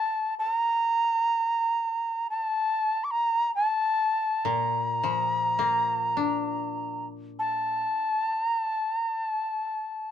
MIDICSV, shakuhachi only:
0, 0, Header, 1, 2, 480
1, 0, Start_track
1, 0, Tempo, 500000
1, 9709, End_track
2, 0, Start_track
2, 0, Title_t, "Shakuhachi"
2, 0, Program_c, 0, 77
2, 0, Note_on_c, 0, 81, 80
2, 329, Note_off_c, 0, 81, 0
2, 373, Note_on_c, 0, 81, 90
2, 489, Note_off_c, 0, 81, 0
2, 489, Note_on_c, 0, 82, 90
2, 2184, Note_off_c, 0, 82, 0
2, 2207, Note_on_c, 0, 81, 85
2, 2917, Note_on_c, 0, 86, 61
2, 2932, Note_off_c, 0, 81, 0
2, 2989, Note_on_c, 0, 82, 88
2, 3003, Note_off_c, 0, 86, 0
2, 3403, Note_off_c, 0, 82, 0
2, 3409, Note_on_c, 0, 81, 82
2, 4273, Note_on_c, 0, 82, 81
2, 4288, Note_off_c, 0, 81, 0
2, 6775, Note_off_c, 0, 82, 0
2, 7094, Note_on_c, 0, 81, 82
2, 8064, Note_off_c, 0, 81, 0
2, 8064, Note_on_c, 0, 82, 82
2, 8265, Note_off_c, 0, 82, 0
2, 8265, Note_on_c, 0, 81, 82
2, 8601, Note_off_c, 0, 81, 0
2, 8601, Note_on_c, 0, 82, 82
2, 8803, Note_off_c, 0, 82, 0
2, 8803, Note_on_c, 0, 81, 82
2, 9709, Note_off_c, 0, 81, 0
2, 9709, End_track
0, 0, End_of_file